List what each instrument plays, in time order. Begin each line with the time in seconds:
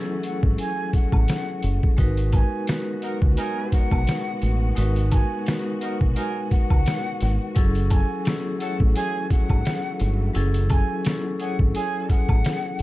Already playing: string section E3 F#3 A3 F#4, vibraphone F#3 C#4 E4 G#4 A4
0.23 flute F#5, closed hi-hat, shaker
0.43 fingered electric bass G#1, kick
0.58 flute G#5, closed hi-hat, shaker
0.93 flute F#5, kick, closed hi-hat, shaker
1.12 fingered electric bass A1, kick, high woodblock
1.28 snare, closed hi-hat, shaker
1.63 fingered electric bass F#1, closed hi-hat, shaker
1.83 kick
1.97 fingered electric bass G#1, string section B2 G#3 B3 F#4, vibraphone G#3 D#4 F#4 A#4 B4, kick, closed hi-hat, shaker
2.17 closed hi-hat
2.32 flute G#5, kick, closed hi-hat, high woodblock, shaker
2.67 vibraphone G#3 D#4 F#4 A#4 B4, snare, closed hi-hat, shaker
3.02 horn section F#3 D#4 A#4, flute F#5, closed hi-hat, shaker
3.22 fingered electric bass C#2, kick
3.37 horn section F#3 D#4 A#4, flute G#5, closed hi-hat, shaker
3.72 flute F#5, kick, closed hi-hat, shaker
3.91 fingered electric bass B1, kick, high woodblock
4.07 snare, closed hi-hat, shaker
4.42 fingered electric bass A1, closed hi-hat, shaker
4.75 fingered electric bass G#1, vibraphone G#3 D#4 F#4 A#4 B4, closed hi-hat, shaker
4.96 closed hi-hat
5.12 flute G#5, kick, closed hi-hat, high woodblock, shaker
5.46 vibraphone G#3 D#4 F#4 A#4 B4, snare, closed hi-hat, shaker
5.81 horn section F#3 D#4 A#4, flute F#5, closed hi-hat, shaker
6.01 fingered electric bass B1, kick
6.16 horn section F#3 D#4 A#4, flute G#5, closed hi-hat, shaker
6.51 flute F#5, kick, closed hi-hat, shaker
6.70 fingered electric bass C#2, kick, high woodblock
6.86 snare, closed hi-hat, shaker
7.21 fingered electric bass G#1, snare, closed hi-hat, shaker
7.54 fingered electric bass F#1, string section E3 F#3 A3, vibraphone F#3 C#4 E4 G#4 A4, kick, closed hi-hat, shaker
7.75 closed hi-hat
7.90 flute G#5, kick, closed hi-hat, high woodblock, shaker
8.24 vibraphone F#3 C#4 E4 G#4 A4, snare, closed hi-hat, shaker
8.60 horn section E3 C#4 A4, flute F#5, closed hi-hat, shaker
8.80 fingered electric bass A1, kick
8.95 horn section E3 C#4 G#4, flute G#5, closed hi-hat, shaker
9.30 flute F#5, kick, closed hi-hat, shaker
9.50 fingered electric bass G#1, kick, high woodblock
9.65 snare, closed hi-hat, shaker
10.00 fingered electric bass G1, closed hi-hat, shaker
10.34 fingered electric bass F#1, vibraphone F#3 C#4 E4 G#4 A4, closed hi-hat, shaker
10.54 closed hi-hat
10.70 flute G#5, kick, closed hi-hat, high woodblock, shaker
11.05 vibraphone F#3 C#4 E4, snare, closed hi-hat, shaker
11.09 vibraphone G#4 A4
11.39 horn section E3 C#4 G#4, flute F#5, closed hi-hat, shaker
11.59 fingered electric bass G#1, kick
11.75 horn section E3 C#4 G#4, flute G#5, closed hi-hat, shaker
12.10 flute F#5, kick, closed hi-hat, shaker
12.29 fingered electric bass A1, kick, high woodblock
12.45 snare, closed hi-hat, shaker
12.79 closed hi-hat